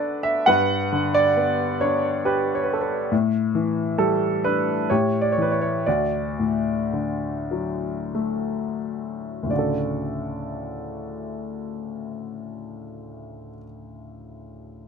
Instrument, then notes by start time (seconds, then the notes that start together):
grand piano
Already playing: D3 A3 D4 F#4 A4 B4 D5
0.23 E5
0.46 G2 B4 F#5
0.92 D3
1.14 D5
1.37 B3
1.81 D4 C#5
2.25 G4 B4
2.55 C#5
2.64 B4
2.73 A4
2.81 B4
3.12 A2
3.55 E3
3.98 G3 A4
4.44 D4 B4
4.90 A2 G4 C#5
5.21 D5
5.32 C#5
5.38 E3
5.42 B4
5.52 C#5
5.61 C#5
5.86 D2 F#4 D5
6.39 A2
6.93 D3
7.51 F#3
8.15 A3
9.43 D2 A2
9.49 C#3 D3 D5
9.55 F#4 A4